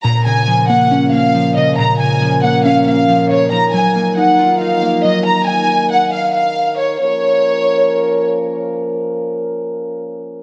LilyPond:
<<
  \new Staff \with { instrumentName = "Violin section" } { \time 4/4 \key bes \minor \tempo 4 = 138 bes''8 aes''4 ges''4 f''4 ees''8 | bes''8 aes''4 ges''8 f''8 f''4 des''8 | bes''8 aes''4 ges''4 f''4 ees''8 | bes''8 aes''4 ges''8 f''8 f''4 des''8 |
des''2. r4 | r1 | }
  \new Staff \with { instrumentName = "French horn section" } { \time 4/4 \key bes \minor << { bes'1~ | bes'1~ | bes'1~ | bes'1 |
<f bes des' bes'>1~ | <f bes des' bes'>1 | } \\ { <f bes des'>1~ | <f bes des'>1 | <ees ees'>1~ | <ees ees'>1 |
r1 | r1 | } >> }
  \new Staff \with { instrumentName = "Synth keys" } { \clef bass \time 4/4 \key bes \minor bes,8 des8 f8 bes8 des'8 bes8 f8 des8 | bes,8 des8 f8 bes8 des'8 bes8 f8 des8 | f8 ges8 bes8 ees'8 f'8 ees'8 bes8 ges8~ | ges2 r2 |
r1 | r1 | }
>>